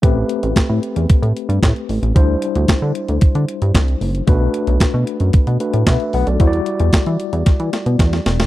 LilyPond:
<<
  \new Staff \with { instrumentName = "Tine electric piano" } { \time 4/4 \key a \dorian \tempo 4 = 113 << { r1 | r1 | r2. <b' e''>8 <b' fis''>16 <a' d''>16~ | <a' d''>16 r2. r8. | } \\ { <a c' g' b'>1 | <g d' e' c''>1 | <a d' fis' b'>2~ <a d' fis' b'>8 <a d' fis' b'>4. | <g e' fis' c'' d''>1 | } >> }
  \new Staff \with { instrumentName = "Analog synth bass" } { \clef bass \time 4/4 \key a \dorian a,,8 r16 a,,16 a,16 a,16 r16 e,16 a,16 a,16 r16 g,16 a,16 r16 a,,16 a,,16 | d,8 r16 d,16 d16 d16 r16 d,16 d16 d16 r16 g,16 c,8 fis,,8 | b,,8 r16 b,,16 b,16 b,16 r16 fis,16 b,16 b,16 r16 a,16 b,16 r16 b,,16 b,,16 | e,8 r16 e,16 e16 e16 r16 e,16 e16 e16 r16 b,16 e,8 e,,8 | }
  \new DrumStaff \with { instrumentName = "Drums" } \drummode { \time 4/4 <hh bd>8 hh16 hh16 <hc hh bd sn>8 hh16 hh16 <hh bd>16 hh16 hh16 hh16 <hc hh bd sn>16 hh16 hho16 hh16 | <hh bd>8 hh16 hh16 <hc hh bd sn>8 hh16 hh16 <hh bd>16 hh16 hh16 hh16 <hc hh bd sn>16 hh16 hho16 hh16 | <hh bd>8 hh16 hh16 <hc hh bd sn>8 hh16 hh16 <hh bd>16 hh16 hh16 hh16 <hc hh bd sn>16 hh16 hho16 hh16 | <hh bd>16 hh16 hh16 hh16 <hc hh bd sn>16 hh16 hh16 hh16 <hh bd sn>16 hh16 <hh sn>16 hh16 <hh bd sn>16 <hh sn>16 <hho sn>16 <hh sn>16 | }
>>